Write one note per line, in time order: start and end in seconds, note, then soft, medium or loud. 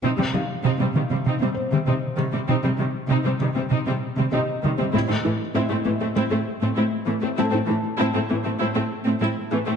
0.03 0.09 C3 soft
0.03 0.13 C3 medium
0.03 0.10 C4 soft
0.03 0.11 D#4 soft
0.18 0.24 C3 soft
0.18 0.25 G3 soft
0.18 0.28 G3 soft
0.18 0.25 C4 soft
0.34 0.40 C3 soft
0.34 0.40 D#3 soft
0.34 0.40 G3 soft
0.34 0.43 G3 soft
0.34 2.14 F5 soft
0.64 0.70 C3 soft
0.64 0.74 C3 medium
0.64 0.71 C4 soft
0.64 0.71 D#4 soft
0.79 0.85 C3 soft
0.79 0.87 G3 soft
0.79 0.89 C4 soft
0.79 0.87 C4 soft
0.94 1.00 C3 soft
0.94 1.05 D#3 medium
0.94 1.02 D#3 soft
0.94 1.02 G3 soft
1.10 1.16 C3 soft
1.10 1.17 G3 soft
1.10 1.20 C4 soft
1.10 1.17 C4 soft
1.25 1.31 C3 soft
1.25 1.35 C3 medium
1.25 1.33 C4 soft
1.25 1.33 D#4 soft
1.40 1.46 C3 soft
1.40 1.48 G3 soft
1.40 1.51 C4 soft
1.40 1.48 C4 soft
1.54 3.35 C5 soft
1.71 1.78 C3 soft
1.71 1.82 D#3 soft
1.71 1.79 G3 soft
1.71 1.79 C4 soft
1.87 1.93 C3 soft
1.87 1.97 C3 medium
1.87 1.93 C4 soft
1.87 1.93 D#4 soft
2.17 2.24 C3 soft
2.17 2.24 D#3 soft
2.17 2.27 D#3 soft
2.17 2.24 G3 soft
2.33 2.39 C3 soft
2.33 2.40 G3 soft
2.33 2.43 C4 soft
2.33 2.40 C4 soft
2.48 2.54 C3 soft
2.48 2.58 C3 medium
2.48 2.54 C4 soft
2.48 2.55 D#4 soft
2.63 2.69 C3 soft
2.63 2.70 G3 soft
2.63 2.73 G3 soft
2.63 2.70 C4 soft
2.78 2.84 C3 soft
2.78 2.86 D#3 soft
2.78 2.89 G3 soft
2.78 2.86 G3 soft
3.08 3.14 C3 soft
3.08 3.19 C3 medium
3.08 3.17 C4 soft
3.08 3.16 D#4 medium
3.25 3.31 C3 soft
3.25 3.32 G3 soft
3.25 3.31 C4 soft
3.25 3.35 C4 soft
3.40 3.46 C3 soft
3.40 3.47 D#3 soft
3.40 3.50 D#3 medium
3.40 3.47 G3 soft
3.55 3.62 C3 soft
3.55 3.62 G3 soft
3.55 3.62 C4 soft
3.55 3.65 C4 soft
3.70 3.77 C3 soft
3.70 3.80 C3 medium
3.70 3.77 C4 soft
3.70 3.77 D#4 medium
3.86 3.92 C3 soft
3.86 3.93 G3 soft
3.86 3.96 C4 soft
3.86 3.93 C4 soft
4.17 4.23 C3 soft
4.17 4.27 D#3 soft
4.17 4.24 G3 soft
4.17 4.24 C4 soft
4.31 4.37 C3 medium
4.31 4.42 C3 medium
4.31 4.39 C4 soft
4.31 4.39 D#4 soft
4.31 6.11 G4 soft
4.31 6.12 D#5 soft
4.63 4.69 C3 soft
4.63 4.73 D#3 soft
4.63 4.70 D#3 soft
4.63 4.70 G3 soft
4.78 4.85 C3 soft
4.78 4.85 G3 soft
4.78 4.84 C4 soft
4.78 4.88 C4 medium
4.94 5.00 A2 medium
4.94 5.03 A3 medium
4.94 5.00 C4 soft
4.94 5.00 E4 soft
5.08 5.15 A2 soft
5.08 5.15 A3 soft
5.08 5.15 C4 soft
5.08 5.18 E4 soft
5.24 5.31 A2 soft
5.24 5.30 E3 soft
5.24 5.31 A3 soft
5.24 5.34 E4 medium
5.54 5.61 A2 soft
5.54 5.64 A3 medium
5.54 5.61 C4 medium
5.54 7.34 E4 soft
5.54 5.61 E4 soft
5.54 7.35 E5 soft
5.70 5.77 A2 soft
5.70 5.76 A3 soft
5.70 5.76 C4 soft
5.70 5.79 A4 soft
5.85 5.92 A2 soft
5.85 5.91 E3 soft
5.85 5.91 A3 soft
5.85 5.94 C4 medium
6.01 6.07 A2 soft
6.01 6.07 A3 soft
6.01 6.07 C4 soft
6.01 6.10 A4 soft
6.16 6.22 A2 soft
6.16 6.25 A3 medium
6.16 6.22 C4 medium
6.16 6.23 E4 soft
6.31 6.37 A2 soft
6.31 6.37 A3 soft
6.31 6.37 C4 soft
6.31 6.40 A4 medium
6.62 6.68 A2 soft
6.62 6.68 A3 soft
6.62 6.68 C4 soft
6.62 6.71 C4 medium
6.77 6.83 A2 medium
6.77 6.87 A3 medium
6.77 6.83 C4 soft
6.77 6.83 E4 soft
7.07 7.13 A2 soft
7.07 7.13 E3 soft
7.07 7.13 A3 soft
7.07 7.17 C4 soft
7.22 7.29 A2 soft
7.22 7.28 A3 soft
7.22 7.29 C4 soft
7.22 7.32 A4 soft
7.38 7.44 A2 medium
7.38 7.48 A3 medium
7.38 7.44 C4 medium
7.38 7.44 E4 soft
7.38 9.18 A4 soft
7.38 9.19 A5 soft
7.52 7.59 A2 soft
7.52 7.58 A3 soft
7.52 7.58 C4 soft
7.52 7.63 E4 soft
7.68 7.75 A2 soft
7.68 7.74 E3 soft
7.68 7.74 A3 soft
7.68 7.79 E4 soft
7.99 8.05 A2 medium
7.99 8.09 A3 medium
7.99 8.05 C4 medium
7.99 8.05 E4 medium
8.14 8.21 A2 soft
8.14 8.21 A3 soft
8.14 8.21 C4 soft
8.14 8.24 A4 medium
8.30 8.37 A2 soft
8.30 8.36 E3 soft
8.30 8.36 A3 soft
8.30 8.40 C4 soft
8.44 8.52 A2 soft
8.44 8.51 A3 soft
8.44 8.51 C4 soft
8.44 8.55 A4 soft
8.59 8.67 A2 medium
8.59 8.70 A3 medium
8.59 8.66 C4 medium
8.59 8.66 E4 medium
8.75 8.82 A2 soft
8.75 8.81 A3 soft
8.75 8.82 C4 soft
8.75 8.86 A4 medium
9.06 9.12 A2 soft
9.06 9.13 A3 soft
9.06 9.12 C4 soft
9.06 9.16 C4 soft
9.21 9.27 A2 medium
9.21 9.31 A3 medium
9.21 9.27 C4 medium
9.21 9.28 E4 soft
9.51 9.57 A2 soft
9.51 9.58 E3 soft
9.51 9.58 A3 soft
9.51 9.62 C4 soft
9.66 9.74 A2 soft
9.66 9.73 A3 soft
9.66 9.73 C4 soft
9.66 9.76 A4 medium